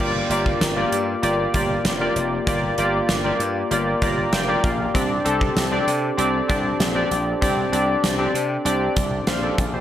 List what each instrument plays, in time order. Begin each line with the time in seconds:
0.00 slap bass G1, synth keys A#3 F4 G4 D5, kick, crash
0.30 slap bass G1, synth keys A#3 F4 G4 D5, closed hi-hat
0.46 kick
0.61 slap bass G1, snare, closed hi-hat
0.76 synth keys A#3 F4 G4 D5
0.92 slap bass G2, closed hi-hat
1.23 slap bass G1, synth keys A#3 F4 G4 D5, closed hi-hat
1.54 slap bass G1, synth keys A#3 F4 G4 D5, kick, closed hi-hat
1.85 slap bass F1, snare, closed hi-hat
2.00 synth keys A#3 F4 G4 D5
2.16 slap bass F1, closed hi-hat
2.47 slap bass G1, synth keys A#3 F4 G4 D5, kick, closed hi-hat
2.78 slap bass G1, synth keys A#3 F4 G4 D5, closed hi-hat
3.09 slap bass G1, snare, closed hi-hat
3.24 synth keys A#3 F4 G4 D5
3.40 slap bass G2, closed hi-hat
3.71 slap bass G1, synth keys A#3 F4 G4 D5, closed hi-hat
4.02 slap bass G1, synth keys A#3 F4 G4 D5 A#5, kick, closed hi-hat
4.32 slap bass F1, synth keys G5, snare, closed hi-hat
4.48 synth keys A#3 F4 G4 D5
4.64 slap bass A#1, synth keys F5, kick, closed hi-hat
4.94 slap bass C2, synth keys C4 D4 G4 D5, kick, closed hi-hat
5.24 slap bass C2, synth keys C4 D4 G4 A4, closed hi-hat
5.41 kick
5.57 slap bass C2, snare, closed hi-hat
5.71 synth keys C4 D4 G4 D5
5.87 slap bass C3, closed hi-hat
6.18 slap bass C2, synth keys C4 D4 G4 D5, closed hi-hat
6.48 slap bass C2, synth keys C4 D4 G4 D5, kick, closed hi-hat
6.80 slap bass A#1, snare, closed hi-hat
6.95 synth keys C4 D4 G4 D5
7.11 slap bass A#1, closed hi-hat
7.41 slap bass C2, synth keys C4 D4 G4 D5, kick, closed hi-hat
7.72 slap bass C2, synth keys C4 D4 G4 D5, closed hi-hat
8.03 slap bass C2, snare, closed hi-hat
8.18 synth keys C4 D4 G4 D5
8.34 slap bass C3, closed hi-hat
8.65 slap bass C2, synth keys C4 D4 G4 D5, closed hi-hat
8.96 slap bass C2, kick, closed hi-hat
9.27 slap bass A#1, synth keys C5 F5, snare, closed hi-hat
9.43 synth keys A4 D5
9.58 slap bass A#1, kick, closed hi-hat
9.74 synth keys G4 C5